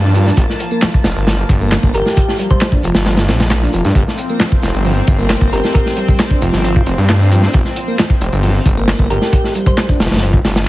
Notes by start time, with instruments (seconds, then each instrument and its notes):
Already playing: detuned saw bass G2, analog synth pad F3 A#3 A5
0.04 tonewheel organ D4, snare
0.15 tonewheel organ F3, closed hi-hat, tambourine
0.26 tonewheel organ D4, snare, tambourine
0.37 detuned saw bass G1, tonewheel organ G3, kick, closed hi-hat, tambourine
0.50 snare
0.59 closed hi-hat, tambourine
0.71 tonewheel organ A#3, tambourine
0.82 tonewheel organ F3, snare, clap, closed hi-hat, tambourine
0.94 kick
1.04 detuned saw bass F1, snare, closed hi-hat, tambourine
1.16 detuned saw bass G1, tambourine
1.27 tonewheel organ F3, snare, closed hi-hat, tambourine
1.49 detuned saw bass G1, kick, closed hi-hat, tambourine
1.60 tonewheel organ A#3, tambourine
1.72 snare, clap, closed hi-hat, tambourine
1.83 detuned saw bass G1, kick
1.94 detuned saw bass G1, tonewheel organ G4, synth pluck A#4, closed hi-hat, tambourine
2.05 snare, tambourine
2.16 kick, closed hi-hat, tambourine
2.29 snare
2.38 tonewheel organ G3, closed hi-hat, tambourine
2.50 synth pluck C5, kick, tambourine
2.61 synth pluck C5, snare, clap, closed hi-hat, tambourine
2.72 tonewheel organ D4, kick
2.83 detuned saw bass F1, tonewheel organ F3, closed hi-hat, tambourine
2.95 detuned saw bass G1, snare, closed hi-hat, tambourine
3.06 snare, closed hi-hat, tambourine
3.17 tonewheel organ F4, snare, closed hi-hat
3.28 detuned saw bass A#1, tonewheel organ C4, snare, closed hi-hat, tambourine
3.40 snare, closed hi-hat, tambourine
3.50 snare, clap, closed hi-hat, tambourine
3.63 tonewheel organ D4, snare
3.73 detuned saw bass F1, tonewheel organ F3, closed hi-hat, tambourine
3.85 detuned saw bass G2, tonewheel organ D4, snare, tambourine
3.95 detuned saw bass G1, tonewheel organ G3, analog synth pad C4, kick, closed hi-hat, tambourine
4.08 snare
4.18 closed hi-hat, tambourine
4.29 tonewheel organ A#3, tambourine
4.40 tonewheel organ F3, snare, clap, closed hi-hat, tambourine
4.52 kick
4.63 detuned saw bass F1, snare, closed hi-hat, tambourine
4.74 detuned saw bass G1, tambourine
4.85 tonewheel organ F3, open hi-hat, tambourine
5.07 detuned saw bass G1, kick, closed hi-hat, tambourine
5.19 tonewheel organ A#3, tambourine
5.30 snare, clap, closed hi-hat, tambourine
5.41 detuned saw bass G1, kick
5.52 detuned saw bass G1, tonewheel organ G4, synth pluck A#4, closed hi-hat, tambourine
5.64 snare, tambourine
5.74 synth pluck A#4, kick, closed hi-hat, tambourine
5.86 snare
5.96 tonewheel organ G3, closed hi-hat, tambourine
6.09 kick, tambourine
6.19 snare, clap, closed hi-hat, tambourine
6.31 tonewheel organ D4, kick
6.42 detuned saw bass F1, tonewheel organ F3, closed hi-hat, tambourine
6.53 detuned saw bass G1, snare, tambourine
6.64 closed hi-hat, tambourine
6.76 tonewheel organ F4, kick
6.86 detuned saw bass F1, tonewheel organ C4, closed hi-hat, tambourine
6.98 detuned saw bass G2, tambourine
7.09 snare, clap, closed hi-hat, tambourine
7.20 tonewheel organ D4, snare
7.31 tonewheel organ F3, closed hi-hat, tambourine
7.43 tonewheel organ D4, snare, tambourine
7.53 detuned saw bass G1, tonewheel organ G3, kick, closed hi-hat, tambourine
7.65 snare
7.76 closed hi-hat, tambourine
7.88 tonewheel organ A#3, tambourine
7.99 tonewheel organ F3, snare, clap, closed hi-hat, tambourine
8.10 kick
8.21 detuned saw bass F1, closed hi-hat, tambourine
8.32 detuned saw bass G1, tambourine
8.43 tonewheel organ F3, open hi-hat, tambourine
8.66 detuned saw bass G1, kick, closed hi-hat, tambourine
8.77 tonewheel organ A#3, tambourine
8.88 snare, clap, closed hi-hat, tambourine
8.99 detuned saw bass G1, kick
9.10 detuned saw bass G1, tonewheel organ G4, synth pluck A#4, closed hi-hat, tambourine
9.22 snare, tambourine
9.33 kick, closed hi-hat, tambourine
9.44 snare
9.55 tonewheel organ G3, closed hi-hat, tambourine
9.66 synth pluck C5, kick, tambourine
9.77 synth pluck C5, snare, clap, closed hi-hat, tambourine
9.89 tonewheel organ D4, kick
10.00 detuned saw bass F1, tonewheel organ F3, snare, closed hi-hat, tambourine
10.05 snare, closed hi-hat
10.11 detuned saw bass G1, snare, closed hi-hat, tambourine
10.17 snare, closed hi-hat
10.22 closed hi-hat, tambourine
10.33 tonewheel organ F4, kick
10.45 detuned saw bass G1, tonewheel organ G3, snare, closed hi-hat, tambourine
10.56 snare, closed hi-hat, tambourine